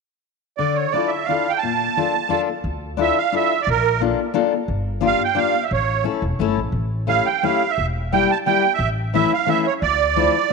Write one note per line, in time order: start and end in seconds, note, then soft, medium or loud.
0.58 0.85 D3 medium
0.58 0.77 D5 medium
0.75 0.93 C#5 soft
0.91 1.11 D4 soft
0.91 1.12 E4 soft
0.91 1.12 F4 soft
0.91 1.11 D5 medium
0.96 1.12 A4 soft
1.08 1.26 E5 medium
1.24 1.53 F5 medium
1.28 1.46 D4 soft
1.28 1.46 E4 soft
1.28 1.46 F4 soft
1.28 1.47 A4 soft
1.49 1.60 G5 medium
1.58 2.41 A5 medium
1.63 1.87 A#2 medium
1.97 2.14 A#3 soft
1.97 2.14 D4 soft
1.97 2.14 F4 soft
1.97 2.14 A4 medium
2.29 2.47 A#3 medium
2.29 2.47 D4 medium
2.29 2.47 F4 medium
2.29 2.48 A4 medium
2.64 3.09 D2 medium
2.97 3.16 D4 medium
2.97 3.17 E4 soft
2.97 3.17 F4 soft
2.97 3.17 A4 medium
3.01 3.19 E5 medium
3.18 3.35 F5 medium
3.32 3.51 D4 soft
3.32 3.51 E4 medium
3.32 3.51 F4 soft
3.32 3.52 A4 medium
3.32 3.62 E5 medium
3.62 3.69 D5 medium
3.67 4.11 A#1 medium
3.67 4.01 A#4 medium
4.00 4.19 A#3 medium
4.00 4.19 D4 soft
4.00 4.19 F4 medium
4.00 4.20 A4 medium
4.34 4.52 A#3 medium
4.34 4.52 D4 medium
4.34 4.52 F4 medium
4.34 4.53 A4 medium
4.68 5.13 G1 medium
5.01 5.20 A#3 medium
5.01 5.20 D4 medium
5.01 5.20 F4 medium
5.01 5.21 G4 medium
5.06 5.23 F5 loud
5.24 5.39 G5 medium
5.35 5.54 A#3 soft
5.35 5.54 D4 medium
5.35 5.54 F4 medium
5.35 5.54 G4 medium
5.35 5.64 F5 medium
5.64 5.72 E5 medium
5.71 6.05 A1 medium
5.71 6.04 C#5 medium
6.04 6.23 A3 soft
6.04 6.23 C#4 soft
6.04 6.23 E4 soft
6.04 6.23 A4 medium
6.22 6.38 E1 medium
6.39 6.56 G1 medium
6.39 6.58 A3 medium
6.39 6.58 C#4 medium
6.39 6.58 E4 medium
6.39 6.59 A4 medium
6.57 6.72 A1 medium
6.72 7.18 A1 medium
7.07 7.26 A3 medium
7.07 7.27 C#4 soft
7.07 7.27 E4 soft
7.07 7.28 G4 medium
7.07 7.28 F5 loud
7.26 7.44 G5 medium
7.43 7.62 A3 medium
7.43 7.62 C#4 medium
7.43 7.62 E4 medium
7.43 7.62 G4 medium
7.43 7.71 F5 medium
7.70 7.86 E5 medium
7.78 8.22 E1 medium
8.12 8.30 G3 medium
8.12 8.30 A#3 medium
8.12 8.30 E4 soft
8.12 8.31 G4 medium
8.12 8.31 G5 loud
8.31 8.38 A5 medium
8.46 8.64 G3 medium
8.46 8.64 A#3 medium
8.46 8.64 E4 medium
8.46 8.65 G4 medium
8.46 8.73 G5 medium
8.74 8.89 E5 medium
8.79 9.23 A1 medium
9.14 9.31 E3 medium
9.14 9.32 A3 medium
9.14 9.32 C#4 medium
9.14 9.32 E4 medium
9.14 9.33 E5 medium
9.34 9.49 F5 medium
9.46 9.65 E3 medium
9.46 9.65 A3 medium
9.46 9.66 C#4 medium
9.46 9.66 E4 medium
9.46 9.67 E5 medium
9.67 9.74 C#5 medium
9.82 10.27 D2 medium
9.82 10.53 D5 medium
10.16 10.34 F3 medium
10.16 10.34 A3 medium
10.16 10.35 D4 soft
10.16 10.35 E4 medium